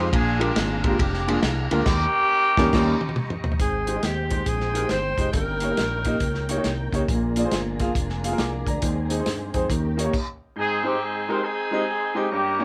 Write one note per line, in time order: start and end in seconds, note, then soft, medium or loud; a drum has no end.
0.00 0.11 F2 medium
0.00 0.10 C4 medium
0.00 0.10 D#4 medium
0.00 0.11 F5 medium
0.00 0.12 C6 medium
0.00 0.11 D#6 medium
0.12 0.50 A#1 loud
0.12 0.80 A#2 medium
0.12 0.97 D4 medium
0.12 0.97 F4 medium
0.12 1.85 G#4 medium
0.12 0.39 G#4 medium
0.12 1.85 F5 medium
0.12 1.85 A#5 medium
0.12 1.85 D6 medium
0.12 kick loud
0.12 ride bell medium
0.39 0.49 G#3 medium
0.39 0.49 A#3 medium
0.39 0.49 D4 medium
0.39 0.49 F4 medium
0.39 0.57 G4 medium
0.39 0.49 A#4 medium
0.39 ride bell medium
0.56 0.93 G#1 loud
0.56 0.85 G#4 medium
0.56 snare loud
0.56 ride bell medium
0.84 0.93 G#3 medium
0.84 0.93 A#3 medium
0.84 0.93 D4 medium
0.84 0.94 F4 medium
0.84 0.94 G4 medium
0.84 1.00 A#4 medium
0.84 kick medium
0.84 ride bell medium
0.99 1.36 F1 medium
0.99 1.83 D4 medium
0.99 1.28 G4 medium
0.99 kick loud
0.99 ride bell medium
1.14 snare soft
1.28 1.36 G#3 medium
1.28 1.36 A#3 medium
1.28 1.37 D4 medium
1.28 1.37 F4 medium
1.28 1.37 G#4 medium
1.28 ride bell medium
1.43 1.67 C2 medium
1.43 snare loud
1.43 ride bell medium
1.71 1.85 D2 medium
1.71 1.80 G#3 medium
1.71 1.80 A#3 medium
1.71 3.14 A#3 medium
1.71 3.14 C#4 loud
1.71 1.80 D4 medium
1.71 1.80 F4 medium
1.71 3.13 G4 loud
1.71 1.80 A#4 medium
1.71 ride bell medium
1.86 2.05 D#2 loud
1.86 3.59 G4 medium
1.86 3.59 D#5 medium
1.86 3.59 A#5 medium
1.86 3.58 C#6 medium
1.86 kick loud
1.86 snare loud
1.86 crash medium
2.57 2.68 D#2 medium
2.57 2.68 G3 loud
2.57 2.69 A#3 medium
2.57 2.69 C#4 loud
2.57 2.69 D#4 loud
2.57 2.69 A#4 loud
2.57 kick loud
2.57 snare loud
2.73 2.92 D#2 loud
2.73 2.92 G3 loud
2.73 2.92 A#3 loud
2.73 2.93 C#4 loud
2.73 2.93 D#4 loud
2.73 2.93 A#4 loud
2.73 kick loud
2.73 snare loud
2.73 crash medium
3.01 high tom medium
3.09 high tom medium
3.16 mid tom medium
3.30 mid tom medium
3.44 floor tom loud
3.52 floor tom medium
3.59 3.97 G#1 medium
3.59 4.27 G#2 medium
3.59 5.32 D#3 medium
3.59 5.32 G#3 medium
3.59 5.33 G#3 medium
3.59 5.32 C4 medium
3.59 5.33 C4 medium
3.59 5.32 D#4 medium
3.59 4.06 G#4 medium
3.59 5.32 C5 medium
3.59 7.05 G5 medium
3.59 kick loud
3.59 closed hi-hat medium
3.87 3.92 G#3 medium
3.87 3.92 D#4 medium
3.87 3.92 G4 medium
3.87 3.93 C5 medium
3.87 closed hi-hat medium
3.94 4.04 G#3 medium
3.94 4.05 D#4 medium
3.94 4.05 G4 medium
3.94 4.05 D#5 medium
4.03 4.40 D#2 medium
4.03 4.49 G4 medium
4.03 snare loud
4.03 closed hi-hat medium
4.30 4.40 G#3 medium
4.30 4.40 D#4 medium
4.30 4.40 G4 medium
4.30 4.41 C5 medium
4.30 kick medium
4.30 closed hi-hat medium
4.46 4.84 A#1 medium
4.46 4.92 G#4 medium
4.46 kick medium
4.46 closed hi-hat medium
4.60 snare soft
4.74 4.79 G#3 medium
4.74 4.79 D#4 medium
4.74 4.80 G4 medium
4.74 4.80 A#4 medium
4.74 closed hi-hat medium
4.81 4.91 G#3 medium
4.81 4.92 D#4 medium
4.81 4.92 G4 medium
4.81 4.92 C5 medium
4.89 5.15 G1 medium
4.89 5.32 C5 medium
4.89 snare medium
4.89 closed hi-hat medium
5.18 5.31 F1 medium
5.18 5.27 G#3 medium
5.18 5.27 D#4 medium
5.18 5.28 G4 medium
5.18 5.28 D#5 medium
5.18 kick medium
5.18 closed hi-hat medium
5.33 5.71 G1 medium
5.33 6.01 G2 medium
5.33 7.06 D#3 medium
5.33 8.79 A#3 medium
5.33 8.80 A#3 medium
5.33 7.06 C#4 medium
5.33 7.07 C#4 medium
5.33 7.07 D#4 medium
5.33 6.88 A#4 medium
5.33 8.79 A#4 medium
5.33 kick loud
5.33 closed hi-hat medium
5.60 5.66 A#3 medium
5.60 5.66 D#4 medium
5.60 5.66 G4 medium
5.60 5.67 C#5 medium
5.60 closed hi-hat medium
5.70 5.79 A#3 medium
5.70 5.80 D#4 medium
5.70 5.80 G4 medium
5.70 5.80 A#4 medium
5.77 6.16 A#1 medium
5.77 snare loud
5.77 closed hi-hat medium
6.05 6.15 A#3 medium
6.05 6.15 D#4 medium
6.05 6.15 G4 medium
6.05 6.15 D#5 medium
6.05 kick medium
6.05 closed hi-hat medium
6.20 6.58 C#2 medium
6.20 kick loud
6.20 closed hi-hat medium
6.34 snare soft
6.49 6.53 A#3 medium
6.49 6.54 D#4 medium
6.49 6.54 G4 medium
6.49 6.54 C#5 medium
6.49 closed hi-hat medium
6.57 6.66 A#3 medium
6.57 6.66 D#4 medium
6.57 6.67 G4 medium
6.57 6.67 C#5 medium
6.64 6.89 C2 medium
6.64 snare medium
6.64 closed hi-hat medium
6.93 7.06 C#2 medium
6.93 7.02 A#3 medium
6.93 7.02 D#4 medium
6.93 7.02 G4 medium
6.93 7.02 C#5 medium
6.93 kick medium
6.93 closed hi-hat medium
7.08 7.45 A#1 medium
7.08 7.76 A#2 medium
7.08 8.82 F3 medium
7.08 8.81 D4 medium
7.08 8.82 D4 medium
7.08 8.82 F4 medium
7.08 9.68 G#4 medium
7.08 8.81 G#4 medium
7.08 kick loud
7.08 closed hi-hat medium
7.36 7.41 A#3 medium
7.36 7.41 F4 medium
7.36 7.41 G#4 medium
7.36 7.42 D5 medium
7.36 closed hi-hat medium
7.44 7.54 A#3 medium
7.44 7.54 F4 medium
7.44 7.54 G#4 medium
7.44 7.54 C5 medium
7.51 7.89 G1 medium
7.51 snare loud
7.51 closed hi-hat medium
7.80 7.89 A#3 medium
7.80 7.89 F4 medium
7.80 7.89 G#4 medium
7.80 7.89 F5 medium
7.80 kick medium
7.80 snare soft
7.80 closed hi-hat medium
7.95 8.33 F1 medium
7.95 kick loud
7.95 closed hi-hat medium
8.09 snare soft
8.24 8.28 A#3 medium
8.24 8.28 F4 medium
8.24 8.29 G#4 medium
8.24 8.29 F5 medium
8.24 closed hi-hat medium
8.31 8.41 A#3 medium
8.31 8.41 F4 medium
8.31 8.41 G#4 medium
8.31 8.41 A#4 medium
8.38 8.63 C2 medium
8.38 8.66 F5 soft
8.38 8.66 D6 medium
8.38 snare medium
8.38 closed hi-hat medium
8.67 8.80 D2 medium
8.67 9.10 D5 soft
8.67 9.09 A#5 medium
8.67 kick medium
8.67 closed hi-hat medium
8.82 9.20 D#2 medium
8.82 9.50 D#3 medium
8.82 9.69 D#3 medium
8.82 9.69 G#3 medium
8.82 9.69 C4 medium
8.82 9.70 C4 medium
8.82 10.12 D#4 medium
8.82 9.69 G#4 medium
8.82 9.70 C5 medium
8.82 kick medium
8.82 closed hi-hat medium
9.10 9.15 C4 medium
9.10 9.15 D#4 medium
9.10 9.15 G#4 medium
9.10 9.16 D#5 medium
9.10 closed hi-hat medium
9.19 9.28 C4 medium
9.19 9.28 D#4 medium
9.19 9.29 G#4 medium
9.19 9.29 C5 medium
9.26 9.51 G2 medium
9.26 snare loud
9.26 closed hi-hat medium
9.54 9.68 F2 medium
9.54 9.63 C4 medium
9.54 9.63 D#4 medium
9.54 9.63 G#4 medium
9.54 9.64 C5 medium
9.54 kick medium
9.54 closed hi-hat medium
9.70 10.07 D#2 medium
9.70 10.11 D#3 medium
9.70 10.13 D#3 medium
9.70 10.13 A#3 medium
9.70 10.14 A#3 medium
9.70 10.13 C#4 medium
9.70 10.14 C#4 medium
9.70 10.13 G4 medium
9.70 10.14 G4 medium
9.70 10.13 A#4 medium
9.70 kick medium
9.70 closed hi-hat medium
9.97 10.02 A#3 medium
9.97 10.02 D#4 medium
9.97 10.03 G4 medium
9.97 10.03 C#5 medium
9.97 closed hi-hat medium
10.04 10.13 A#3 medium
10.04 10.13 D#4 medium
10.04 10.14 G4 medium
10.04 10.14 C#5 medium
10.13 kick loud
10.13 crash medium
10.56 11.24 G#2 medium
10.56 11.41 C4 medium
10.56 11.41 D#4 medium
10.56 12.29 G#4 medium
10.56 10.84 G#4 loud
10.56 12.65 D#5 medium
10.56 12.29 G5 medium
10.56 12.29 C6 medium
10.84 10.93 G#3 medium
10.84 10.93 C4 medium
10.84 10.93 D#4 medium
10.84 10.94 G4 medium
10.84 11.02 G4 loud
10.84 10.94 C5 medium
11.03 11.30 G#4 loud
11.29 11.37 G#3 medium
11.29 11.38 C4 medium
11.29 11.38 D#4 medium
11.29 11.38 G4 medium
11.29 11.38 A#4 medium
11.29 11.45 C5 loud
11.44 12.27 C4 medium
11.44 12.27 D#4 medium
11.44 12.16 G#4 medium
11.71 11.81 G#3 medium
11.71 11.81 C4 medium
11.71 11.81 D#4 medium
11.71 11.81 G4 medium
11.71 11.82 D#5 medium
12.15 12.24 G#3 medium
12.15 12.25 C4 medium
12.15 12.25 D#4 medium
12.15 12.25 G4 medium
12.15 12.30 G4 loud
12.15 12.25 D#5 medium
12.31 12.65 G2 medium
12.31 12.65 A#3 medium
12.31 12.65 C#4 medium
12.31 12.65 G4 loud
12.31 12.65 G4 medium
12.31 12.65 A#5 medium
12.31 12.65 C#6 medium
12.59 12.65 A#3 medium
12.59 12.65 C#4 medium
12.59 12.65 D#4 medium
12.59 12.65 G4 medium
12.59 12.65 C#5 medium